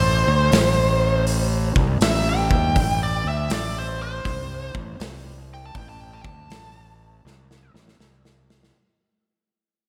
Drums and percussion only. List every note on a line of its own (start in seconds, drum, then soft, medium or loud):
0.52 snare loud
0.52 open hi-hat medium
1.27 open hi-hat medium
1.76 kick medium
2.01 snare loud
2.01 open hi-hat medium
2.51 kick loud
2.76 kick loud
2.76 open hi-hat medium
3.50 snare loud
3.50 open hi-hat medium
4.25 kick loud
4.25 open hi-hat medium
4.75 kick medium
5.00 snare loud
5.00 open hi-hat medium
5.75 kick loud
5.75 open hi-hat medium
6.25 kick loud
6.50 snare loud
6.50 open hi-hat medium
7.27 snare medium
7.51 snare medium
7.76 snare medium
7.88 snare medium
8.00 snare medium
8.25 snare medium
8.50 snare loud
8.63 snare medium